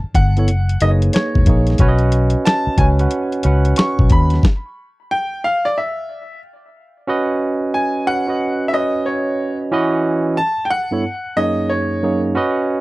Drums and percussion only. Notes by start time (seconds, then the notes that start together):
0.15 kick, closed hi-hat
0.37 closed hi-hat
0.48 closed hi-hat
0.69 closed hi-hat
0.81 closed hi-hat
1.02 closed hi-hat
1.13 snare, closed hi-hat
1.35 kick
1.46 kick, closed hi-hat
1.67 snare, closed hi-hat
1.78 kick, closed hi-hat
1.99 closed hi-hat
2.12 closed hi-hat
2.30 closed hi-hat
2.46 snare, closed hi-hat
2.78 kick, closed hi-hat
2.99 closed hi-hat
3.11 closed hi-hat
3.32 closed hi-hat
3.43 closed hi-hat
3.65 closed hi-hat
3.76 snare, closed hi-hat
3.99 kick
4.10 kick, closed hi-hat
4.30 snare, closed hi-hat
4.43 kick, snare